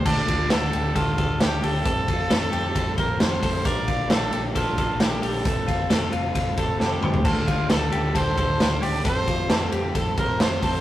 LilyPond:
<<
  \new Staff \with { instrumentName = "Clean electric guitar" } { \time 4/4 \key f \major \tempo 4 = 133 a'8 f'8 a'8 g'8 a'8 a'4 g'8 | a'8 f'8 a'8 g'8 a'8 c''8 c''8 a'8 | bes'8 f'8 a'8 g'8 a'8 a'4 g'8 | a'8 f'8 a'8 f'8 f'8 a'8 a'8 c''8 |
a'8 f'8 a'8 g'8 a'8 a'4 g'8 | a'8 f'8 a'8 g'8 a'8 c''8 c''8 a'8 | }
  \new Staff \with { instrumentName = "Trumpet" } { \time 4/4 \key f \major d''4 a'4 f'4 g'8 a'8~ | a'2~ a'8 bes'8 c''4 | d''4 a'4 f'4 g'8 a'8~ | a'2 r8 a'8 g'4 |
f'4 a'4 c''4. d''8 | c''4. r4 bes'8 c''4 | }
  \new Staff \with { instrumentName = "Transistor combo organ" } { \time 4/4 \key f \major <d' f' a'>1 | <c' f' a'>1 | <bes d' f'>1 | <c' f' a'>1 |
<d' f' a'>1 | <c' f' a'>1 | }
  \new Staff \with { instrumentName = "Fingered electric bass" } { \clef bass \time 4/4 \key f \major d,8 d,8 r8 d,8 d,8 d,8 d,8 d,8 | f,8 f,8 f,8 f,8 f,8 f,8 f,8 f,8 | bes,,8 bes,,8 bes,,8 bes,,8 bes,,8 bes,,8 bes,,8 bes,,8 | f,,8 f,,8 f,,8 f,,8 f,,8 f,,8 f,,8 f,,8 |
d,8 d,8 d,8 d,8 r8 d,8 d,8 d,8 | f,8 f,8 f,8 f,8 f,8 f,8 f,8 f,8 | }
  \new DrumStaff \with { instrumentName = "Drums" } \drummode { \time 4/4 <cymc bd>8 <bd cymr>8 <cymr sn>8 cymr8 <bd cymr>8 <bd cymr>8 <cymr sn>8 <hho cymr>8 | <hhp bd cymr>8 <bd cymr>8 <cymr sn>8 cymr8 <bd cymr>8 <bd cymr>8 <cymr sn>8 <hho bd cymr>8 | <hhp bd cymr>8 <bd cymr>8 <cymr sn>8 cymr8 <bd cymr>8 <bd cymr>8 <cymr sn>8 <hho cymr>8 | <hhp bd cymr>8 <bd cymr>8 <cymr sn>8 cymr8 <bd cymr>8 <bd cymr>8 sn8 toml16 tomfh16 |
<cymc bd>8 <bd cymr>8 <cymr sn>8 cymr8 <bd cymr>8 <bd cymr>8 <cymr sn>8 <hho cymr>8 | <hhp bd cymr>8 <bd cymr>8 <cymr sn>8 cymr8 <bd cymr>8 <bd cymr>8 <cymr sn>8 <hho bd cymr>8 | }
>>